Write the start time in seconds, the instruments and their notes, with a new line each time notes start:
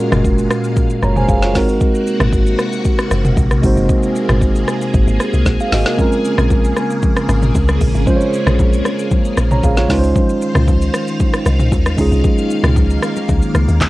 Already playing: string machine A#2 G#3 F5, tine electric piano G#3 C#4 F4 F#4 A#4
0.12 log drum bass F#1, cross-stick, mid tom, shaker
0.24 kick, shaker
0.38 shaker
0.50 cross-stick, shaker
0.64 shaker
0.76 kick, shaker
0.90 shaker
1.03 log drum bass F#1, tine electric piano C#5 A#5, cross-stick, shaker
1.16 tine electric piano C5 G#5, mid tom, shaker
1.29 log drum bass F#1, tine electric piano G#4 F5, kick, shaker
1.42 tine electric piano F4 C#5, snare, shaker
1.53 log drum bass G#1, string machine C3 A#3 F#4, tine electric piano G#3 C4 D#4 F#4, kick, snare, open hi-hat, shaker
1.57 tine electric piano A#4
1.68 shaker
1.81 kick, shaker
1.95 shaker
2.07 shaker
2.20 log drum bass G#1, cross-stick, mid tom, shaker
2.33 kick, shaker
2.47 shaker
2.59 cross-stick, shaker
2.73 shaker
2.85 kick, shaker
2.99 cross-stick, shaker
3.11 log drum bass F#1, cross-stick, shaker
3.25 mid tom, shaker
3.37 log drum bass A#1, kick, shaker
3.51 cross-stick, shaker
3.62 log drum bass G#1, tine electric piano G#3 C4 D#4 F#4, string machine G#4, kick, open hi-hat, shaker
3.66 tine electric piano C5
3.77 log drum bass F#1, shaker
3.90 kick, shaker
4.03 shaker
4.16 shaker
4.29 log drum bass G#1, cross-stick, mid tom, shaker
4.41 kick, shaker
4.55 shaker
4.68 cross-stick, shaker
4.82 shaker
4.94 log drum bass G#1, kick, shaker
5.08 log drum bass G#1, shaker
5.20 cross-stick, shaker
5.34 log drum bass C2, shaker
5.46 log drum bass A#1, kick, snare, shaker
5.60 tine electric piano G#4 F5, shaker
5.72 log drum bass G#1, tine electric piano F#4 D#5, snare, open hi-hat, shaker
5.86 tine electric piano A#4, snare, shaker
5.97 string machine C#3, tine electric piano G#3 C4 C#4 F4, kick, low conga, shaker
6.01 tine electric piano A#4
6.12 shaker
6.25 shaker
6.38 log drum bass A#1, cross-stick, mid tom, high bongo, shaker
6.50 kick, high bongo, low conga, shaker
6.64 shaker
6.77 cross-stick, low bongo, shaker
6.90 shaker
7.02 kick, low conga, shaker
7.16 cross-stick, shaker
7.29 log drum bass G#1, cross-stick, low bongo, shaker
7.42 mid tom, shaker
7.55 log drum bass C#2, kick, high bongo, shaker
7.69 cross-stick, low bongo, shaker
7.81 log drum bass A#1, kick, open hi-hat, shaker
7.95 log drum bass G#1, shaker
8.06 tine electric piano G#3 C#4 F4 C5, kick, low conga, shaker
8.10 tine electric piano C5
8.16 tine electric piano C#5
8.21 shaker
8.33 shaker
8.47 log drum bass A#1, cross-stick, mid tom, high bongo, shaker
8.59 kick, high bongo, low conga, shaker
8.73 shaker
8.85 cross-stick, low bongo, shaker
8.99 shaker
9.11 kick, low conga, shaker
9.25 shaker
9.37 log drum bass A#1, cross-stick, low bongo, shaker
9.51 tine electric piano C#5 A#5, mid tom, shaker
9.63 log drum bass A#1, tine electric piano G#4 F5, kick, high bongo, shaker
9.77 tine electric piano F4 C#5, snare, low bongo, shaker
9.88 log drum bass C#2, string machine D#3 C5 F5, tine electric piano G#3 C#4 D#4 F4, kick, snare, open hi-hat, shaker
9.93 tine electric piano B4
9.99 tine electric piano C5
10.03 shaker
10.15 kick, low conga, shaker
10.29 shaker
10.42 shaker
10.55 log drum bass C#2, cross-stick, mid tom, high bongo, shaker
10.67 kick, high bongo, low conga, shaker
10.82 shaker
10.94 cross-stick, low bongo, shaker
11.08 shaker
11.20 kick, low conga, shaker
11.34 cross-stick, shaker
11.46 log drum bass C2, cross-stick, low bongo, shaker
11.60 mid tom, shaker
11.72 log drum bass D#2, kick, high bongo, shaker
11.86 cross-stick, low bongo, shaker
11.97 log drum bass C#2, tine electric piano G#3 C#4 D#4 F4, string machine A#3, kick, open hi-hat, shaker
12.01 tine electric piano G#4
12.12 log drum bass C2, shaker
12.24 kick, low conga, shaker
12.38 shaker
12.51 shaker
12.64 log drum bass C#2, cross-stick, mid tom, high bongo, shaker
12.76 kick, high bongo, low conga, shaker
12.90 shaker
13.02 cross-stick, low bongo, shaker
13.16 low bongo, shaker
13.28 log drum bass C#2, kick, low conga, shaker
13.42 shaker
13.55 log drum bass C#2, cross-stick, low bongo, shaker
13.68 log drum bass D#2, shaker
13.81 log drum bass C#2, kick, clap, high bongo, shaker